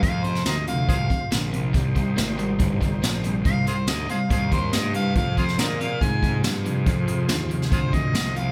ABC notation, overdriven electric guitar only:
X:1
M:4/4
L:1/8
Q:1/4=140
K:Fdor
V:1 name="Overdriven electric guitar" clef=bass
[F,,C,] [F,,C,] [F,,D,] [F,,C,] [F,,C,] [F,,C,] [F,,D,] [F,,C,] | [C,G,] [C,G,] [C,=A,] [C,G,] [C,G,] [C,G,] [C,A,] [C,G,] | [C,G,] [C,G,] [C,=A,] [C,G,] [C,G,] [C,G,] [C,A,] [C,G,] | [F,,C,] [F,,C,] [F,,D,] [F,,C,] [F,,C,] [F,,C,] [F,,D,] [F,,C,] |
[F,,C,] [F,,C,] [F,,D,] [F,,C,] [F,,C,] [F,,C,] [F,,D,] [F,,C,] |]